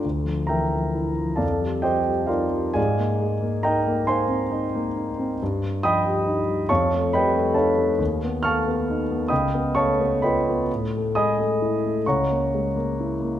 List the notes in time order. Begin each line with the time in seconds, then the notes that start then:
0.04 D2
0.24 F3
0.47 E3 A#4 E5 G5 A#5
0.74 F3
0.95 E4
1.18 F3
1.36 F2 A4 D5 F5 A5
1.61 G3
1.82 F3 G4 C5 D#5 G5
2.07 G3
2.27 D#4 F4 A#4 D5 F5
2.51 G3
2.74 G#2 G#4 D5 F5 G#5
2.98 A#3
3.21 G#3
3.42 A#3
3.63 D#4 A#4 D#5 G5 A#5
3.87 A#3
4.07 D#4 C5 F5 G#5 C6
4.28 C4
4.51 D#4
4.75 A#3
4.97 D#4
5.19 C4
5.42 G2
5.64 G3
5.83 F3 D#5 G5 B5 D#6
6.05 G3
6.27 D#4
6.47 G3
6.69 F2 C#5 F5 A5 C#6
6.94 A3
7.13 G3 B4 D#5 G5 B5
7.35 A3
7.54 D#4 A4 C#5 F5 A5
7.78 A3
7.99 D#2
8.24 B3
8.43 A3 F5 A5 C#6 F6
8.68 B3
8.90 D#4
9.11 B3
9.28 C#2 D#5 G5 B5 D#6
9.54 B3
9.75 A3 C#5 F5 A5 C#6
10.00 B3
10.22 F4 B4 D#5 G5 B5
10.49 B3
10.73 A2
10.97 A3
11.15 G#3 D#5 G#5 B5 D#6
11.39 A3
11.62 E4
11.86 A3
12.06 C#2 C#5 F#5 A#5 C#6
12.31 A#3
12.54 G#3
12.76 A#3
13.00 E4
13.22 A#3